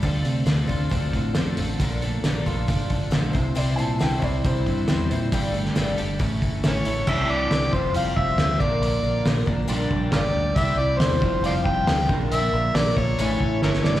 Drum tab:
CC |----------------|----------------|----------------|----------------|
HH |o-o-o-o-o-o-o-o-|o-o-o-o-o-o-o-o-|o-o-o-o-o-o-o-o-|o-o-o-o-o-o-o-o-|
SD |----o-------o---|----o-------o---|----o-------o---|---oo-------o---|
BD |o-----o-o-o-----|o-----o-o-o---o-|------o-o-o-----|o-------o-o-----|

CC |x---------------|----------------|----------------|----------------|
HH |----o---o---o---|o---o---o---o---|o---o---o---o---|o---o---o-------|
SD |----o-------o---|----o-------o---|----o-------o---|----o-------oooo|
BD |o-----o---o---o-|------o---o-----|o-----o---o---o-|------o---o-----|